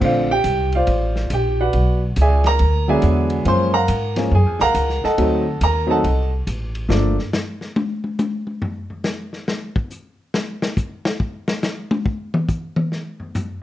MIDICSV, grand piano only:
0, 0, Header, 1, 2, 480
1, 0, Start_track
1, 0, Tempo, 429799
1, 21, Time_signature, 4, 2, 24, 8
1, 15215, End_track
2, 0, Start_track
2, 0, Title_t, "Grand piano"
2, 0, Program_c, 0, 0
2, 2, Note_on_c, 0, 53, 47
2, 5, Note_on_c, 0, 60, 65
2, 6, Note_on_c, 0, 50, 55
2, 7, Note_on_c, 0, 57, 48
2, 48, Note_on_c, 0, 77, 86
2, 50, Note_on_c, 0, 74, 64
2, 58, Note_on_c, 0, 72, 70
2, 60, Note_on_c, 0, 65, 67
2, 293, Note_off_c, 0, 53, 0
2, 294, Note_off_c, 0, 60, 0
2, 295, Note_off_c, 0, 50, 0
2, 295, Note_off_c, 0, 57, 0
2, 338, Note_off_c, 0, 77, 0
2, 339, Note_off_c, 0, 74, 0
2, 343, Note_off_c, 0, 72, 0
2, 344, Note_off_c, 0, 65, 0
2, 348, Note_on_c, 0, 67, 85
2, 349, Note_on_c, 0, 79, 110
2, 788, Note_off_c, 0, 67, 0
2, 788, Note_off_c, 0, 79, 0
2, 839, Note_on_c, 0, 77, 79
2, 848, Note_on_c, 0, 65, 68
2, 849, Note_on_c, 0, 74, 73
2, 853, Note_on_c, 0, 72, 67
2, 1430, Note_off_c, 0, 77, 0
2, 1435, Note_off_c, 0, 65, 0
2, 1435, Note_off_c, 0, 74, 0
2, 1437, Note_off_c, 0, 72, 0
2, 1490, Note_on_c, 0, 79, 81
2, 1499, Note_on_c, 0, 67, 76
2, 1779, Note_off_c, 0, 79, 0
2, 1783, Note_off_c, 0, 67, 0
2, 1792, Note_on_c, 0, 71, 72
2, 1793, Note_on_c, 0, 74, 69
2, 1794, Note_on_c, 0, 78, 85
2, 1796, Note_on_c, 0, 66, 73
2, 2230, Note_off_c, 0, 71, 0
2, 2230, Note_off_c, 0, 74, 0
2, 2231, Note_off_c, 0, 78, 0
2, 2232, Note_off_c, 0, 66, 0
2, 2472, Note_on_c, 0, 80, 92
2, 2475, Note_on_c, 0, 76, 74
2, 2476, Note_on_c, 0, 74, 72
2, 2477, Note_on_c, 0, 68, 76
2, 2750, Note_off_c, 0, 80, 0
2, 2752, Note_off_c, 0, 76, 0
2, 2753, Note_off_c, 0, 68, 0
2, 2753, Note_off_c, 0, 74, 0
2, 2758, Note_on_c, 0, 82, 114
2, 2760, Note_on_c, 0, 70, 81
2, 3193, Note_off_c, 0, 82, 0
2, 3194, Note_off_c, 0, 70, 0
2, 3213, Note_on_c, 0, 54, 65
2, 3218, Note_on_c, 0, 50, 69
2, 3221, Note_on_c, 0, 56, 65
2, 3228, Note_on_c, 0, 80, 102
2, 3229, Note_on_c, 0, 59, 76
2, 3230, Note_on_c, 0, 74, 81
2, 3234, Note_on_c, 0, 68, 82
2, 3236, Note_on_c, 0, 76, 82
2, 3824, Note_off_c, 0, 80, 0
2, 3825, Note_off_c, 0, 74, 0
2, 3827, Note_off_c, 0, 68, 0
2, 3828, Note_off_c, 0, 54, 0
2, 3829, Note_off_c, 0, 76, 0
2, 3830, Note_off_c, 0, 50, 0
2, 3832, Note_off_c, 0, 56, 0
2, 3836, Note_off_c, 0, 59, 0
2, 3858, Note_on_c, 0, 53, 62
2, 3863, Note_on_c, 0, 56, 63
2, 3865, Note_on_c, 0, 58, 54
2, 3868, Note_on_c, 0, 61, 74
2, 3887, Note_on_c, 0, 84, 105
2, 3890, Note_on_c, 0, 72, 94
2, 4141, Note_off_c, 0, 53, 0
2, 4144, Note_off_c, 0, 56, 0
2, 4144, Note_off_c, 0, 58, 0
2, 4146, Note_off_c, 0, 61, 0
2, 4170, Note_on_c, 0, 78, 79
2, 4174, Note_on_c, 0, 70, 79
2, 4175, Note_on_c, 0, 82, 106
2, 4177, Note_on_c, 0, 77, 80
2, 4178, Note_off_c, 0, 84, 0
2, 4179, Note_off_c, 0, 72, 0
2, 4619, Note_off_c, 0, 78, 0
2, 4620, Note_off_c, 0, 70, 0
2, 4621, Note_off_c, 0, 82, 0
2, 4622, Note_off_c, 0, 77, 0
2, 4648, Note_on_c, 0, 53, 63
2, 4648, Note_on_c, 0, 56, 54
2, 4657, Note_on_c, 0, 58, 59
2, 4660, Note_on_c, 0, 61, 62
2, 4802, Note_off_c, 0, 53, 0
2, 4802, Note_off_c, 0, 56, 0
2, 4807, Note_off_c, 0, 58, 0
2, 4808, Note_off_c, 0, 61, 0
2, 4853, Note_on_c, 0, 80, 89
2, 4856, Note_on_c, 0, 68, 80
2, 5141, Note_off_c, 0, 80, 0
2, 5142, Note_off_c, 0, 68, 0
2, 5152, Note_on_c, 0, 77, 89
2, 5152, Note_on_c, 0, 82, 114
2, 5155, Note_on_c, 0, 78, 90
2, 5159, Note_on_c, 0, 70, 92
2, 5590, Note_off_c, 0, 77, 0
2, 5590, Note_off_c, 0, 82, 0
2, 5592, Note_off_c, 0, 78, 0
2, 5594, Note_off_c, 0, 70, 0
2, 5634, Note_on_c, 0, 69, 79
2, 5636, Note_on_c, 0, 81, 96
2, 5638, Note_on_c, 0, 75, 76
2, 5638, Note_on_c, 0, 78, 75
2, 5785, Note_on_c, 0, 54, 76
2, 5785, Note_on_c, 0, 57, 64
2, 5787, Note_on_c, 0, 60, 63
2, 5790, Note_on_c, 0, 63, 71
2, 6064, Note_off_c, 0, 54, 0
2, 6065, Note_off_c, 0, 57, 0
2, 6066, Note_off_c, 0, 60, 0
2, 6067, Note_off_c, 0, 63, 0
2, 6228, Note_off_c, 0, 69, 0
2, 6228, Note_off_c, 0, 81, 0
2, 6229, Note_off_c, 0, 75, 0
2, 6230, Note_off_c, 0, 78, 0
2, 6294, Note_on_c, 0, 82, 105
2, 6305, Note_on_c, 0, 70, 75
2, 6550, Note_on_c, 0, 54, 73
2, 6557, Note_on_c, 0, 60, 67
2, 6557, Note_on_c, 0, 63, 78
2, 6563, Note_on_c, 0, 57, 65
2, 6581, Note_off_c, 0, 82, 0
2, 6587, Note_off_c, 0, 70, 0
2, 6593, Note_on_c, 0, 81, 95
2, 6596, Note_on_c, 0, 78, 72
2, 6598, Note_on_c, 0, 75, 70
2, 6599, Note_on_c, 0, 69, 76
2, 6714, Note_off_c, 0, 54, 0
2, 6717, Note_off_c, 0, 60, 0
2, 6717, Note_off_c, 0, 63, 0
2, 6720, Note_off_c, 0, 57, 0
2, 7031, Note_off_c, 0, 81, 0
2, 7033, Note_off_c, 0, 78, 0
2, 7034, Note_off_c, 0, 69, 0
2, 7034, Note_off_c, 0, 75, 0
2, 7689, Note_on_c, 0, 53, 68
2, 7690, Note_on_c, 0, 57, 62
2, 7691, Note_on_c, 0, 58, 62
2, 7699, Note_on_c, 0, 62, 76
2, 7977, Note_off_c, 0, 53, 0
2, 7977, Note_off_c, 0, 57, 0
2, 7978, Note_off_c, 0, 58, 0
2, 7982, Note_off_c, 0, 62, 0
2, 15215, End_track
0, 0, End_of_file